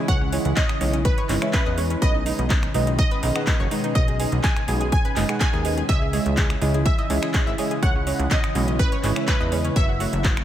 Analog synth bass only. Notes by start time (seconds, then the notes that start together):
0.08 C#2
0.45 C#2
0.81 B1
1.29 G#1
1.66 E2
2.02 B1
2.39 B1
2.74 B1
3.23 B1
3.60 F#1
3.96 B1
4.32 B1
4.68 B1
5.16 F#1
5.53 D#2
5.89 C#2
6.26 C#2
6.62 C#2
7.10 C#2
7.47 G#1
7.83 C#2
8.19 C#2
8.55 B1
9.03 G#1
9.40 E2
9.76 F#1
10.13 F#1